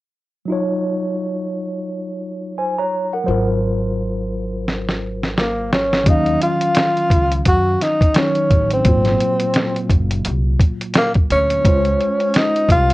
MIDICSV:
0, 0, Header, 1, 5, 480
1, 0, Start_track
1, 0, Tempo, 697674
1, 332, Time_signature, 4, 2, 24, 8
1, 8900, End_track
2, 0, Start_track
2, 0, Title_t, "Tine electric piano"
2, 0, Program_c, 0, 4
2, 312, Note_on_c, 0, 54, 55
2, 329, Note_on_c, 0, 63, 53
2, 342, Note_on_c, 0, 65, 56
2, 358, Note_on_c, 0, 73, 63
2, 1758, Note_off_c, 0, 73, 0
2, 1776, Note_on_c, 0, 80, 52
2, 1780, Note_on_c, 0, 72, 47
2, 1908, Note_off_c, 0, 80, 0
2, 1910, Note_off_c, 0, 72, 0
2, 1916, Note_on_c, 0, 82, 61
2, 1921, Note_on_c, 0, 73, 54
2, 2143, Note_off_c, 0, 82, 0
2, 2145, Note_off_c, 0, 73, 0
2, 2156, Note_on_c, 0, 78, 55
2, 2161, Note_on_c, 0, 70, 49
2, 2215, Note_off_c, 0, 54, 0
2, 2223, Note_off_c, 0, 63, 0
2, 2230, Note_off_c, 0, 65, 0
2, 2230, Note_on_c, 0, 54, 61
2, 2246, Note_on_c, 0, 72, 59
2, 2261, Note_on_c, 0, 65, 58
2, 2268, Note_off_c, 0, 70, 0
2, 2276, Note_on_c, 0, 70, 64
2, 2382, Note_off_c, 0, 78, 0
2, 4133, Note_off_c, 0, 54, 0
2, 4141, Note_off_c, 0, 72, 0
2, 4149, Note_off_c, 0, 65, 0
2, 4152, Note_on_c, 0, 51, 57
2, 4157, Note_off_c, 0, 70, 0
2, 4167, Note_on_c, 0, 54, 49
2, 4183, Note_on_c, 0, 61, 50
2, 4197, Note_on_c, 0, 77, 55
2, 5575, Note_off_c, 0, 51, 0
2, 5582, Note_off_c, 0, 54, 0
2, 5590, Note_off_c, 0, 61, 0
2, 5597, Note_off_c, 0, 77, 0
2, 5603, Note_on_c, 0, 51, 45
2, 5611, Note_on_c, 0, 54, 40
2, 5619, Note_on_c, 0, 61, 42
2, 5627, Note_on_c, 0, 63, 50
2, 6070, Note_on_c, 0, 46, 51
2, 6077, Note_off_c, 0, 54, 0
2, 6085, Note_on_c, 0, 54, 50
2, 6088, Note_off_c, 0, 51, 0
2, 6096, Note_off_c, 0, 61, 0
2, 6099, Note_off_c, 0, 63, 0
2, 6101, Note_on_c, 0, 58, 47
2, 6116, Note_on_c, 0, 65, 63
2, 7974, Note_off_c, 0, 46, 0
2, 7981, Note_off_c, 0, 54, 0
2, 7989, Note_off_c, 0, 58, 0
2, 7991, Note_on_c, 0, 61, 53
2, 7996, Note_off_c, 0, 65, 0
2, 8006, Note_on_c, 0, 56, 50
2, 8021, Note_on_c, 0, 72, 53
2, 8037, Note_on_c, 0, 65, 64
2, 8900, Note_off_c, 0, 56, 0
2, 8900, Note_off_c, 0, 61, 0
2, 8900, Note_off_c, 0, 65, 0
2, 8900, Note_off_c, 0, 72, 0
2, 8900, End_track
3, 0, Start_track
3, 0, Title_t, "Tenor saxophone"
3, 0, Program_c, 1, 66
3, 3708, Note_on_c, 1, 58, 73
3, 3924, Note_off_c, 1, 58, 0
3, 3948, Note_on_c, 1, 61, 77
3, 4186, Note_on_c, 1, 63, 94
3, 4197, Note_off_c, 1, 61, 0
3, 4419, Note_off_c, 1, 63, 0
3, 4424, Note_on_c, 1, 65, 97
3, 5111, Note_off_c, 1, 65, 0
3, 5144, Note_on_c, 1, 66, 95
3, 5383, Note_on_c, 1, 63, 84
3, 5393, Note_off_c, 1, 66, 0
3, 5625, Note_on_c, 1, 61, 85
3, 5636, Note_off_c, 1, 63, 0
3, 6000, Note_off_c, 1, 61, 0
3, 6008, Note_on_c, 1, 60, 86
3, 6933, Note_off_c, 1, 60, 0
3, 7552, Note_on_c, 1, 58, 83
3, 7655, Note_off_c, 1, 58, 0
3, 7788, Note_on_c, 1, 61, 91
3, 8510, Note_on_c, 1, 63, 104
3, 8520, Note_off_c, 1, 61, 0
3, 8741, Note_off_c, 1, 63, 0
3, 8750, Note_on_c, 1, 65, 104
3, 8900, Note_off_c, 1, 65, 0
3, 8900, End_track
4, 0, Start_track
4, 0, Title_t, "Upright bass"
4, 0, Program_c, 2, 32
4, 2256, Note_on_c, 2, 32, 67
4, 4147, Note_off_c, 2, 32, 0
4, 4173, Note_on_c, 2, 39, 85
4, 4370, Note_off_c, 2, 39, 0
4, 4890, Note_on_c, 2, 37, 79
4, 5088, Note_off_c, 2, 37, 0
4, 5134, Note_on_c, 2, 42, 81
4, 5331, Note_off_c, 2, 42, 0
4, 5854, Note_on_c, 2, 33, 79
4, 6051, Note_off_c, 2, 33, 0
4, 6093, Note_on_c, 2, 32, 90
4, 6290, Note_off_c, 2, 32, 0
4, 6809, Note_on_c, 2, 30, 90
4, 7008, Note_off_c, 2, 30, 0
4, 7057, Note_on_c, 2, 36, 89
4, 7253, Note_off_c, 2, 36, 0
4, 7777, Note_on_c, 2, 38, 80
4, 7973, Note_off_c, 2, 38, 0
4, 8015, Note_on_c, 2, 37, 87
4, 8212, Note_off_c, 2, 37, 0
4, 8730, Note_on_c, 2, 36, 83
4, 8900, Note_off_c, 2, 36, 0
4, 8900, End_track
5, 0, Start_track
5, 0, Title_t, "Drums"
5, 3220, Note_on_c, 9, 38, 52
5, 3289, Note_off_c, 9, 38, 0
5, 3362, Note_on_c, 9, 38, 46
5, 3430, Note_off_c, 9, 38, 0
5, 3601, Note_on_c, 9, 38, 53
5, 3670, Note_off_c, 9, 38, 0
5, 3700, Note_on_c, 9, 38, 70
5, 3769, Note_off_c, 9, 38, 0
5, 3941, Note_on_c, 9, 38, 86
5, 4010, Note_off_c, 9, 38, 0
5, 4080, Note_on_c, 9, 38, 80
5, 4149, Note_off_c, 9, 38, 0
5, 4170, Note_on_c, 9, 42, 82
5, 4171, Note_on_c, 9, 36, 104
5, 4239, Note_off_c, 9, 42, 0
5, 4240, Note_off_c, 9, 36, 0
5, 4307, Note_on_c, 9, 42, 30
5, 4376, Note_off_c, 9, 42, 0
5, 4414, Note_on_c, 9, 42, 68
5, 4482, Note_off_c, 9, 42, 0
5, 4548, Note_on_c, 9, 42, 48
5, 4616, Note_off_c, 9, 42, 0
5, 4642, Note_on_c, 9, 42, 71
5, 4657, Note_on_c, 9, 38, 94
5, 4711, Note_off_c, 9, 42, 0
5, 4726, Note_off_c, 9, 38, 0
5, 4795, Note_on_c, 9, 42, 31
5, 4864, Note_off_c, 9, 42, 0
5, 4887, Note_on_c, 9, 36, 72
5, 4894, Note_on_c, 9, 42, 64
5, 4956, Note_off_c, 9, 36, 0
5, 4963, Note_off_c, 9, 42, 0
5, 5034, Note_on_c, 9, 42, 47
5, 5103, Note_off_c, 9, 42, 0
5, 5129, Note_on_c, 9, 42, 84
5, 5132, Note_on_c, 9, 36, 84
5, 5197, Note_off_c, 9, 42, 0
5, 5200, Note_off_c, 9, 36, 0
5, 5376, Note_on_c, 9, 42, 58
5, 5379, Note_on_c, 9, 38, 35
5, 5445, Note_off_c, 9, 42, 0
5, 5447, Note_off_c, 9, 38, 0
5, 5510, Note_on_c, 9, 36, 78
5, 5516, Note_on_c, 9, 42, 45
5, 5579, Note_off_c, 9, 36, 0
5, 5585, Note_off_c, 9, 42, 0
5, 5603, Note_on_c, 9, 42, 78
5, 5615, Note_on_c, 9, 38, 94
5, 5672, Note_off_c, 9, 42, 0
5, 5684, Note_off_c, 9, 38, 0
5, 5746, Note_on_c, 9, 42, 32
5, 5815, Note_off_c, 9, 42, 0
5, 5852, Note_on_c, 9, 36, 83
5, 5852, Note_on_c, 9, 42, 61
5, 5921, Note_off_c, 9, 36, 0
5, 5921, Note_off_c, 9, 42, 0
5, 5990, Note_on_c, 9, 42, 43
5, 6058, Note_off_c, 9, 42, 0
5, 6088, Note_on_c, 9, 42, 81
5, 6090, Note_on_c, 9, 36, 105
5, 6156, Note_off_c, 9, 42, 0
5, 6159, Note_off_c, 9, 36, 0
5, 6225, Note_on_c, 9, 42, 32
5, 6232, Note_on_c, 9, 38, 35
5, 6294, Note_off_c, 9, 42, 0
5, 6301, Note_off_c, 9, 38, 0
5, 6332, Note_on_c, 9, 42, 61
5, 6401, Note_off_c, 9, 42, 0
5, 6464, Note_on_c, 9, 42, 47
5, 6533, Note_off_c, 9, 42, 0
5, 6561, Note_on_c, 9, 42, 68
5, 6576, Note_on_c, 9, 38, 95
5, 6630, Note_off_c, 9, 42, 0
5, 6645, Note_off_c, 9, 38, 0
5, 6715, Note_on_c, 9, 42, 33
5, 6784, Note_off_c, 9, 42, 0
5, 6807, Note_on_c, 9, 36, 70
5, 6814, Note_on_c, 9, 42, 63
5, 6876, Note_off_c, 9, 36, 0
5, 6883, Note_off_c, 9, 42, 0
5, 6954, Note_on_c, 9, 42, 50
5, 7023, Note_off_c, 9, 42, 0
5, 7050, Note_on_c, 9, 42, 88
5, 7119, Note_off_c, 9, 42, 0
5, 7290, Note_on_c, 9, 36, 76
5, 7297, Note_on_c, 9, 42, 64
5, 7359, Note_off_c, 9, 36, 0
5, 7366, Note_off_c, 9, 42, 0
5, 7438, Note_on_c, 9, 42, 43
5, 7507, Note_off_c, 9, 42, 0
5, 7525, Note_on_c, 9, 42, 71
5, 7537, Note_on_c, 9, 38, 105
5, 7594, Note_off_c, 9, 42, 0
5, 7606, Note_off_c, 9, 38, 0
5, 7667, Note_on_c, 9, 42, 33
5, 7674, Note_on_c, 9, 36, 92
5, 7736, Note_off_c, 9, 42, 0
5, 7743, Note_off_c, 9, 36, 0
5, 7778, Note_on_c, 9, 42, 66
5, 7847, Note_off_c, 9, 42, 0
5, 7914, Note_on_c, 9, 42, 44
5, 7983, Note_off_c, 9, 42, 0
5, 8013, Note_on_c, 9, 36, 100
5, 8016, Note_on_c, 9, 42, 84
5, 8082, Note_off_c, 9, 36, 0
5, 8085, Note_off_c, 9, 42, 0
5, 8152, Note_on_c, 9, 42, 30
5, 8221, Note_off_c, 9, 42, 0
5, 8259, Note_on_c, 9, 42, 68
5, 8328, Note_off_c, 9, 42, 0
5, 8393, Note_on_c, 9, 42, 51
5, 8462, Note_off_c, 9, 42, 0
5, 8489, Note_on_c, 9, 42, 72
5, 8504, Note_on_c, 9, 38, 102
5, 8558, Note_off_c, 9, 42, 0
5, 8573, Note_off_c, 9, 38, 0
5, 8641, Note_on_c, 9, 42, 33
5, 8710, Note_off_c, 9, 42, 0
5, 8729, Note_on_c, 9, 36, 72
5, 8738, Note_on_c, 9, 42, 67
5, 8798, Note_off_c, 9, 36, 0
5, 8807, Note_off_c, 9, 42, 0
5, 8877, Note_on_c, 9, 42, 52
5, 8900, Note_off_c, 9, 42, 0
5, 8900, End_track
0, 0, End_of_file